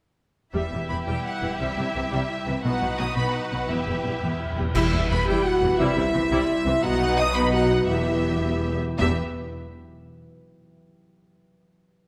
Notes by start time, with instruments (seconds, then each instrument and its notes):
0.53 double bass section E1, timpani E2, cello section E2, harp E3, viola section G3 E4, violin section G4 E5
0.72 double bass section E1, cello section E2, viola section G3, harp E5
0.89 double bass section E1, cello section E2, viola section E3, harp E4, violin section B5
1.07 double bass section E1, cello section E2, harp G3, viola section G3, violin section G5
1.25 harp E5, violin section F#5
1.42 double bass section E1, cello section E2, viola section E3, harp G4
1.59 double bass section C2, harp C3, cello section C3, viola section G3, violin section E5
1.76 double bass section C2, cello section C3, viola section G3, harp E4
1.94 double bass section C2, cello section C3, viola section E3, harp G3
2.11 double bass section C2, cello section C3, viola section G3, harp C4
2.30 harp E4
2.46 double bass section C2, cello section C3, viola section E3, harp E5
2.63 double bass section B1, harp B2, cello section B2, viola section B3 D#4, violin section F#4 B4 F#5
2.81 double bass section B1, cello section B2, viola section B3, harp D#4
2.98 double bass section B1, cello section B2, viola section F#3, harp B3, violin section D#6
3.15 double bass section B1, cello section B2, harp F#3, viola section B3, violin section B5
3.33 harp D#4, violin section F#5
3.51 double bass section B1, cello section B2, viola section F#3, harp B4
3.68 double bass section E1, timpani E2, cello section E2, harp E3, viola section B3 E4, violin section G4 E5
3.76 timpani E2
3.84 double bass section E1, timpani E2, cello section E2, viola section B3, harp G4
3.92 timpani E2
3.99 timpani E2
4.04 double bass section E1, cello section E2, timpani E2, viola section G3, harp B3
4.15 timpani E2
4.22 double bass section E1, timpani E2, cello section E2, viola section B3, harp E4
4.30 timpani E2
4.37 timpani E2, harp G4
4.45 timpani E2
4.53 timpani E2
4.57 double bass section E1, cello section E2, timpani E2, viola section G3, harp B4
4.74 double bass section E1, timpani E2, cello section E2, harp E3, viola section G3 E4, french horn section E4, violin section E5, concert bass drum, crash
4.83 harp G3
4.92 double bass section E1, cello section E2, viola section G3 E4, harp E4
5.01 harp B4
5.09 double bass section E1, cello section E2, viola section E3 B3, harp G4, french horn section B4, violin section B5
5.19 harp E5
5.25 double bass section E1, cello section E2, viola section G3 E4, french horn section G4, violin section G5, harp B5
5.43 french horn section F#4, violin section F#5, harp B5
5.53 harp E5
5.62 double bass section E1, cello section E2, viola section E3 B3, harp B4
5.71 harp E4
5.78 double bass section C2, cello section C3, harp C3, viola section G3 E4, french horn section E4, violin section E5
5.88 harp C4
5.97 double bass section C2, cello section C3, harp G3, viola section G3 E4
6.06 harp E4
6.13 double bass section C2, cello section C3, viola section E3 C4, harp C5
6.23 harp G4
6.31 double bass section C2, cello section C3, viola section G3 E4, harp E5
6.39 harp C6
6.48 harp E5
6.56 harp G4
6.65 double bass section C2, cello section C3, viola section E3 C4, harp E4
6.74 harp G3
6.82 double bass section B1, cello section B2, harp B2, viola section B3 D#4, french horn section F#4, violin section F#5
6.92 harp F#3
7.01 harp B3
7.09 harp D#4
7.17 harp F#4, french horn section D#5, violin section D#6
7.26 harp B4
7.34 viola section B3 D#4, french horn section B4, harp D#5, violin section B5
7.45 harp F#5
7.53 french horn section F#4, harp D#5, violin section F#5
7.62 harp B4
7.70 harp D#4
7.80 harp B3
7.88 double bass section E1, cello section E2, harp E3, viola section B3 G4, french horn section E4, violin section E5
7.98 harp B3
8.07 harp E4
8.17 harp G4
8.25 harp B4
8.34 harp E5
8.43 harp G5
8.52 harp B5
8.61 harp G5
8.71 harp E5
8.80 harp G4
8.90 harp E4
8.96 double bass section E1, timpani E2, cello section E2, harp E3 B3 E4 G4, viola section B3, french horn section E4, violin section E5
9.00 viola section G4, harp E5